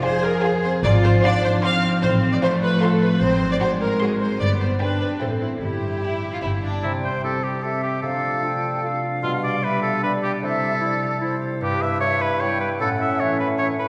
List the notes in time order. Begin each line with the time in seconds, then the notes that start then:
Already playing: F2 G#3
0.03 F4 G#4 C5 G#5
0.24 G#4 A#4
0.43 F4 G#4 C5 G#5
0.64 C4 C5
0.84 G#1 G#2 F4 D5
1.03 F3 C5
1.24 D4 F4 C5 D5 C6
1.42 F4 C5
1.63 C4 F4 C5 F5 C6
1.84 C4
2.02 A1 A2 C4 C5
2.24 F3
2.32 D5
2.42 A3 F4 C5 C6
2.63 F4 B4
2.82 F4 A4 C5 C6
3.01 C4 B4
3.21 G#1 G#2 C4 C5
3.42 F#3
3.51 D5
3.61 G#3 F#4 C5 C6
3.81 F#4 A#4
4.01 F#4 G#4 C5 C6
4.20 C4 C5
4.40 G1 G2 B3 D5
4.61 G3 C5
4.80 D4 G4 B4 G5
5.00 B3 B4
5.20 A1 A2 C4 E4 A4 C5 G5
5.41 C4 E4
5.54 A4
5.61 G1 G2 E4 G4
5.82 G3
6.01 E4 G5
6.23 G4
6.33 F4
6.42 G1 G2 E4 G5
6.63 B3 D4
6.83 C3 G3 C4 E4 G5
7.04 C4 C5
7.24 E4 G4 A4 C5
7.43 G4
7.63 G4 A4 C5 E5
7.83 G4
8.02 C3 F3 D4 A4 F5
8.23 A3
8.42 D4 F4 G5
8.62 F4
8.83 F4 A4 F5
9.03 F4
9.23 B2 G3 F4
9.43 G3 D5
9.62 D4 G4 B4 E5
9.82 G4 A4
10.02 D4 G4 B4 D5
10.23 G4
10.43 C3 E4 A4 E5
10.63 G3
10.80 E4 D5
11.02 G4
11.21 E4 C5
11.41 G4
11.61 G2 E4 G4 B4
11.81 B3 E5
12.00 G3 E4 C#5 E5
12.19 G4 B4
12.40 G3 E4 B4 C#5 G5
12.60 G4 B4
12.80 A2 C#4 A4 F#5
13.00 C#4 E5
13.20 E3 C#4 E4 C#5 E5
13.40 C#4 B4
13.58 E3 C#4 C#5
13.79 E4 B4